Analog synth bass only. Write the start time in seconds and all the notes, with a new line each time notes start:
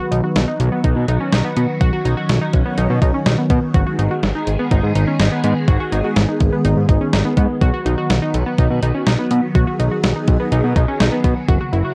0.11 B1
0.36 B1
0.60 B1
0.84 B1
0.96 B2
1.08 B1
1.32 B1
1.57 B2
1.81 B1
2.05 B1
2.29 B1
2.54 B1
2.78 B1
2.90 B2
3.02 B1
3.26 B1
3.50 B2
3.74 G#1
3.99 G#1
4.23 G#1
4.47 G#1
4.71 G#1
4.83 G#2
4.95 G#1
5.20 G#1
5.44 G#2
5.68 G#1
5.92 G#1
6.16 G#1
6.41 G#1
6.65 G#1
6.77 G#2
6.89 G#1
7.13 G#1
7.37 G#2
7.62 B1
7.86 B1
8.10 B1
8.34 B1
8.58 B1
8.70 B2
8.82 B1
9.07 B1
9.31 B2
9.55 B1
9.79 B1
10.03 B1
10.28 B1
10.52 B1
10.64 B2
10.76 B1
11.00 B1
11.24 B2
11.49 F#1
11.73 F#1